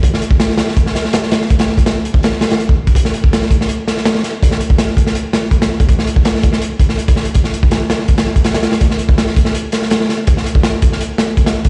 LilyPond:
\new DrumStaff \with { instrumentName = "Drums" } \drummode { \time 4/4 \tempo 4 = 164 <hh bd>16 sn16 hh16 bd16 <hh sn>16 sn16 <hh sn>16 sn16 <hh bd>16 sn16 <hh sn>16 sn16 <hh sn>16 sn16 <hh sn>16 sn16 | <hh bd>16 <hh sn>16 sn16 <hh bd>16 <hh sn>8 hh16 bd16 <hh sn>16 sn16 <hh sn>16 <hh sn>16 hh16 bd8 <hh bd>16 | <hh bd>16 sn16 hh16 bd16 <hh sn>16 sn16 <hh bd>16 sn16 hh8 <hh sn>16 sn16 <hh sn>16 sn16 <hh sn>8 | <hh bd>16 sn16 hh16 bd16 <hh sn>8 <hh bd>16 sn16 hh8 <hh sn>8 <hh bd>16 <hh sn>8 <hh bd>16 |
<hh bd>16 sn16 hh16 bd16 <hh sn>16 sn16 <hh bd>16 sn16 hh8 <hh bd>16 sn16 hh16 <hh bd>16 sn16 hh16 | <hh bd>16 sn16 hh16 bd16 <hh sn>8 <hh sn>16 sn16 <hh bd>16 <hh sn>16 sn16 <hh bd>16 <hh sn>16 <hh sn>16 <hh sn>16 <hh sn>16 | <hh bd>16 sn16 hh16 bd16 <hh sn>16 sn16 <hh bd>16 sn16 hh8 <hh sn>16 sn16 <hh sn>16 sn16 <hh sn>8 | <hh bd>16 sn16 hh16 bd16 <hh sn>8 <hh bd>16 sn16 hh8 <hh sn>8 <hh bd>16 <hh sn>8 <hh bd>16 | }